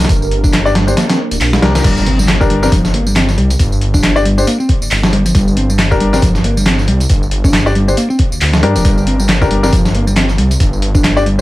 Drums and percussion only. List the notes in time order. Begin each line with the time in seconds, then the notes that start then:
0.00 tambourine
0.05 snare, closed hi-hat
0.09 kick, closed hi-hat, tambourine
0.22 tambourine
0.31 closed hi-hat
0.44 kick, tambourine
0.53 snare, clap, closed hi-hat, tambourine
0.66 tambourine
0.75 snare, closed hi-hat
0.88 tambourine
0.97 snare, closed hi-hat, tambourine
1.09 snare, closed hi-hat, tambourine
1.31 closed hi-hat, tambourine
1.41 clap, open hi-hat, tambourine
1.53 snare, tambourine
1.63 snare, closed hi-hat
1.75 snare, closed hi-hat, tambourine
1.84 kick, closed hi-hat, crash, tambourine
1.97 tambourine
2.06 closed hi-hat
2.19 tambourine
2.28 snare, clap, closed hi-hat
2.41 kick, tambourine
2.50 closed hi-hat
2.63 snare, tambourine
2.72 kick, closed hi-hat, tambourine
2.85 snare, tambourine
2.94 closed hi-hat
3.07 tambourine
3.16 snare, clap, closed hi-hat, tambourine
3.29 snare, tambourine
3.38 closed hi-hat
3.50 closed hi-hat, tambourine
3.59 kick, closed hi-hat, tambourine
3.72 tambourine
3.81 closed hi-hat
3.94 kick, tambourine
4.03 snare, clap, closed hi-hat, tambourine
4.16 tambourine
4.25 closed hi-hat
4.38 tambourine
4.47 closed hi-hat, tambourine
4.60 tambourine
4.69 kick, closed hi-hat
4.82 tambourine
4.91 clap, open hi-hat, tambourine
5.03 snare, tambourine
5.13 closed hi-hat
5.26 closed hi-hat, tambourine
5.35 kick, closed hi-hat, tambourine
5.48 tambourine
5.57 closed hi-hat
5.70 tambourine
5.79 snare, clap, closed hi-hat, tambourine
5.91 kick, tambourine
6.00 closed hi-hat
6.13 snare, tambourine
6.22 kick, closed hi-hat, tambourine
6.35 snare, tambourine
6.44 closed hi-hat
6.57 tambourine
6.66 snare, clap, closed hi-hat, tambourine
6.79 snare, tambourine
6.88 closed hi-hat
7.00 closed hi-hat, tambourine
7.10 kick, closed hi-hat, tambourine
7.23 tambourine
7.31 closed hi-hat
7.44 kick, tambourine
7.53 snare, clap, closed hi-hat, tambourine
7.67 tambourine
7.75 closed hi-hat
7.88 tambourine
7.97 closed hi-hat, tambourine
8.10 tambourine
8.19 kick, closed hi-hat
8.32 tambourine
8.41 clap, open hi-hat, tambourine
8.53 snare, tambourine
8.63 closed hi-hat
8.76 closed hi-hat, tambourine
8.85 kick, closed hi-hat, tambourine
8.98 tambourine
9.07 closed hi-hat
9.20 tambourine
9.29 snare, clap, closed hi-hat, tambourine
9.41 kick, tambourine
9.51 closed hi-hat
9.63 snare, tambourine
9.72 kick, closed hi-hat, tambourine
9.85 snare, tambourine
9.95 closed hi-hat
10.07 tambourine
10.16 snare, clap, closed hi-hat, tambourine
10.29 snare, tambourine
10.38 closed hi-hat
10.51 closed hi-hat, tambourine
10.60 kick, closed hi-hat, tambourine
10.73 tambourine
10.82 closed hi-hat
10.95 kick, tambourine
11.04 snare, clap, closed hi-hat, tambourine
11.17 tambourine
11.26 closed hi-hat